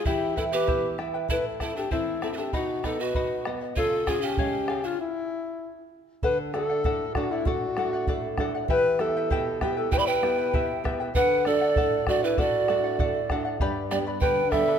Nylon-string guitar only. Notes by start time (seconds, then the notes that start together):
0.06 E3
0.37 E4
0.67 B3
0.98 E4
1.28 A2
1.61 C4
1.91 E3
2.22 C4
2.53 B2
2.84 B3
3.16 D#4
3.47 B3
3.77 C#3
4.08 C#4
4.39 G#3
4.70 C#4
6.23 D3
6.54 A3 D4 F#4
6.84 A2
7.16 A3 D4 F#4
7.45 A2
7.77 A3 D4 F#4
8.08 A2
8.37 A3 D4 F#4
8.68 E3
8.99 B3 E4 G4
9.30 B2
9.61 B3 E4 G4
9.91 B2
10.22 B3 E4 G4
10.54 B2
10.84 B3 E4 G4
11.16 D3
11.46 A3 D4 F#4
11.77 A2
12.08 A3 D4 F#4
12.38 A2
12.69 A3 D4 F#4
13.00 A2
13.30 A3 D4 F#4
13.61 G2
13.91 G3 B3 D4
14.22 D3
14.53 G3 B3 D4